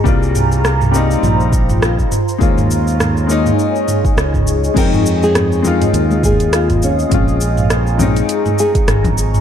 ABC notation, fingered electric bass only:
X:1
M:4/4
L:1/8
Q:"Swing 16ths" 1/4=102
K:Fm
V:1 name="Fingered electric bass" clef=bass
C,,4 B,,,3 z | E,,4 z2 D,,2 | F,,4 E,,4 | B,,,4 z2 A,,,2 |]